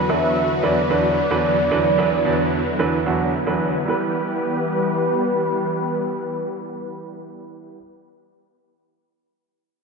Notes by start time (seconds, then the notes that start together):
Already playing: E2 D3 F#3 B3 F#4 B4
0.09 E2 F#3 D4 B4 E5
0.63 E2 F#3 D4 B4 D5
0.90 E2 F#3 D4 B4
1.31 E2 F#3 D4 B4
1.71 E2 F#3 D4 E4 B4
1.98 E2 F#3 D4 B4
2.25 E2 F#3 D4 D5
2.79 E2 F#3 D4 B4
3.06 E2 F#3 D4 F#4
3.47 E2 F#3 D4 B4
3.85 E3 G3 B3 E4 G4 B4
3.90 B4